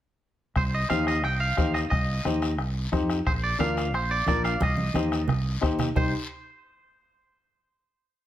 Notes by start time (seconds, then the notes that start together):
0.56 C2 C5, bombo low, bombo rim, high conga, long guiro
0.74 D#5
0.90 D#2 D#4 G4 C5 F5, bombo rim, high conga, short guiro
1.07 D#5, bombo rim, short guiro
1.24 C2 G5, bombo rim, high conga, long guiro
1.40 F5
1.57 D#2 D#4 G4 C5, bombo low, bombo rim, high conga, short guiro
1.74 D#5, bombo rim, short guiro
1.90 C2 D#5, bombo low, bombo rim, high conga, long guiro
2.25 D#2 D#4 G4 C5, bombo rim, high conga, short guiro
2.42 bombo rim, short guiro
2.58 C2, bombo rim, high conga, long guiro
2.92 F2 D#4 G4 C5, bombo low, bombo rim, high conga, short guiro
3.10 bombo rim, short guiro
3.26 A#1 C5, bombo low, bombo rim, high conga, long guiro
3.44 D5
3.59 D2 D4 F4 A#4 F5, bombo rim, high conga, short guiro
3.77 bombo rim, short guiro
3.93 A#1 C5, bombo rim, high conga, long guiro
4.11 D5
4.26 A#1 D4 F4 A#4 D5, bombo low, bombo rim, high conga, short guiro
4.44 F5, bombo rim, short guiro
4.61 C2 D#5, bombo low, bombo rim, high conga, long guiro
4.77 high conga
4.94 D#2 D#4 G4 C5, bombo rim, high conga, short guiro
5.12 bombo rim, short guiro
5.28 C2, bombo rim, low conga, long guiro
5.61 D#2 D#4 G4 C5, bombo low, bombo rim, short guiro
5.79 bombo rim, low conga, short guiro
5.96 C2 D#4 G4 C5, bombo low, low conga, long guiro